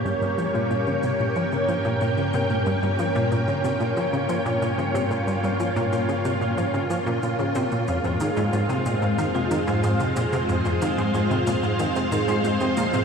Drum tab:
SH |xxxxxxxxxxxxxxxx|xxxxxxxxxxxxxxxx|xxxxxxxxxxxxxxxx|xxxxxxxxxxxxxxxx|
T1 |o----o----o----o|----o----o----o-|---o----o----o--|-o----o----o----|

SH |xxxxxxxxxxxxxxxx|
T1 |o----o----o----o|